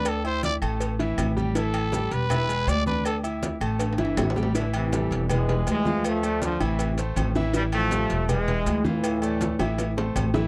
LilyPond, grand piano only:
\new Staff \with { instrumentName = "Grand piano" } { \time 4/4 \key a \minor \tempo 4 = 160 <d' d'' d'''>8 <e' e'' e'''>4 <a a' a''>4 <e e' e''>4 <g g' g''>8 | <e e' e''>4 <g g' g''>4 <e' e'' e'''>8 <gis gis' gis''>4 <d' d'' d'''>8~ | <d' d'' d'''>8 <e' e'' e'''>4 <a a' a''>4 <e e' e''>4 <g g' g''>8 | <e e' e''>4 <g g' a'>4 <gis gis' b'>8 <gis gis' b'>4 <f f' f''>8~ |
<f f' f''>8 <a a' d''>4 <e e' e''>4 <a a' c''>4 <e e' e''>8 | <e e' e''>4 <g g' a'>4 <gis gis' b'>8 <gis gis' b'>4 <e f' f''>8~ | <e f' f''>8 <a a' d''>4 <e e' e''>4 <a a' c''>4 <e e' e''>8 | }